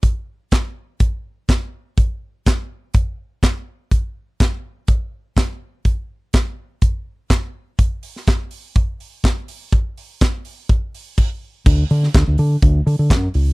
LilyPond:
<<
  \new Staff \with { instrumentName = "Fingered electric bass" } { \clef bass \time 4/4 \key d \lydian \tempo 4 = 124 r1 | r1 | r1 | r1 |
r1 | r1 | d,8 d8 d,16 d,16 d8 d,8 d16 d16 fis,8 cis,8 | }
  \new DrumStaff \with { instrumentName = "Drums" } \drummode { \time 4/4 <hh bd>4 <hc hh bd sn>4 <hh bd>4 <hc hh bd sn>4 | <hh bd>4 <hc hh bd sn>4 <hh bd>4 <hc hh bd sn>4 | <hh bd>4 <hc hh bd sn>4 <hh bd>4 <hc hh bd sn>4 | <hh bd>4 <hc hh bd sn>4 <hh bd>4 <hc hh bd sn>4 |
<hh bd>8 hho16 sn16 <hc hh bd sn>8 hho8 <hh bd>8 hho8 <hc hh bd sn>8 hho8 | <hh bd>8 hho8 <hc hh bd sn>8 hho8 <hh bd>8 hho8 <cymc bd>4 | <cymc bd>8 hho16 sn16 <hc hh bd sn>8 hho8 <hh bd>8 hho8 <hc hh bd sn>8 hho8 | }
>>